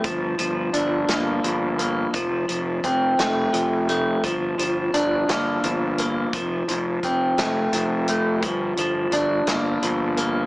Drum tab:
HH |xxxxxx|xxxxxx|xxxxxx|xxxxxx|
SD |---o--|---o--|---o--|---o--|
BD |o-----|o-o---|o-----|o-o---|

HH |xxxxxx|
SD |---o--|
BD |o-----|